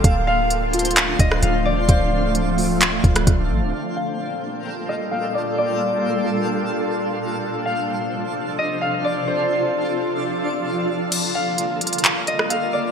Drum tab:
CC |--------------------------------|--------------------------------|--------------------------------|--------------------------------|
HH |x-------x---xxxxx---x---x-------|x-------x---o---x---x-x-x-------|--------------------------------|--------------------------------|
CP |----------------x---------------|----------------x---------------|--------------------------------|--------------------------------|
SD |----------------------r---------|----------------------r---------|--------------------------------|--------------------------------|
BD |o-------------------o-----------|o-------------------o---o-------|--------------------------------|--------------------------------|

CC |--------------------------------|--------------------------------|x-------------------------------|
HH |--------------------------------|--------------------------------|x-------x---xxxxx---x---x-------|
CP |--------------------------------|--------------------------------|----------------x---------------|
SD |--------------------------------|--------------------------------|----------------------r---------|
BD |--------------------------------|--------------------------------|--------------------------------|